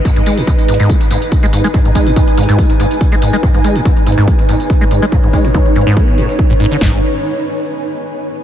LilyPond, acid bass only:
\new Staff \with { instrumentName = "Acid bass" } { \clef bass \time 4/4 \key gis \minor \tempo 4 = 142 gis,16 gis,16 gis16 gis,16 gis,16 r16 gis,16 gis,16 b16 r16 gis,16 r8 gis16 gis,16 gis16 | gis,16 gis,16 gis16 gis,16 gis,16 r16 gis,16 gis,16 b16 r16 gis,16 r8 gis16 gis,16 gis16 | gis,16 gis,16 gis16 gis,16 gis,16 r16 gis,16 gis,16 b16 r16 gis,16 r8 gis16 gis,16 gis16 | gis,16 gis,16 gis16 gis,16 gis,16 r16 gis,16 gis,16 b8 gis,16 r8 gis,16 gis,16 d16 |
gis,8 r2. r8 | }